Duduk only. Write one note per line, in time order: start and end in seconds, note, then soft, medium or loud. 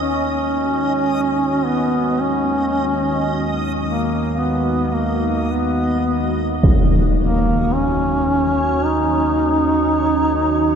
0.02 1.67 C#4 medium
1.66 2.23 B3 medium
2.21 3.59 C#4 medium
3.85 4.40 A#3 medium
4.38 4.94 B3 medium
4.93 5.52 A#3 medium
5.50 6.34 B3 medium
7.19 7.75 A#3 medium
7.74 8.87 C#4 medium
8.85 10.75 D#4 medium